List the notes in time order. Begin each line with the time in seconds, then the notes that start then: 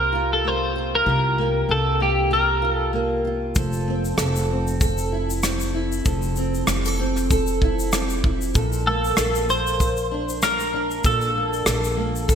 Already playing: C2 C3 A#3 G4 A#4
0.12 F4
0.33 A4
0.44 A#3 C5
0.76 F4
0.95 A#4
1.06 C2 C3 G4
1.38 A#3
1.69 C2 G4 A4
2.00 A#3 G4
2.31 G4 A#4
2.62 F4
2.74 A4
2.93 A#3
3.25 F4
3.56 F1 F3 A4, kick, shaker
3.73 shaker
3.88 C4
4.05 shaker
4.18 F1 A4, cross-stick, shaker
4.36 shaker
4.51 C4
4.67 shaker
4.81 A4, kick, shaker
4.98 shaker
5.12 E4
5.30 shaker
5.43 C4, cross-stick, shaker
5.60 shaker
5.74 E4
5.92 shaker
6.05 F1 F3 A4, kick, shaker
6.22 shaker
6.36 C4, shaker
6.54 shaker
6.67 F1 G4, cross-stick, shaker
6.85 A4, shaker
6.99 C4
7.16 cross-stick, shaker
7.30 A4, kick, shaker
7.47 shaker
7.62 E4, kick
7.79 shaker
7.92 C4, cross-stick, shaker
8.10 shaker
8.24 E4, kick
8.41 shaker
8.54 A#1 A#2 A4, kick, shaker
8.72 shaker
8.86 A#3 A4
9.04 shaker
9.17 A#1 A4, cross-stick, shaker
9.35 shaker
9.49 A#3 C5, shaker
9.67 shaker
9.80 kick, shaker
9.97 shaker
10.11 D4
10.29 shaker
10.42 A#3 A#4, cross-stick, shaker
10.60 shaker
10.73 D4
10.91 shaker
11.04 A#1 A#2 A4, kick, shaker
11.21 shaker
11.35 A#3
11.53 shaker
11.65 A#1 A4, cross-stick, shaker
11.84 shaker
11.97 A#3
12.16 shaker
12.28 A4, kick, shaker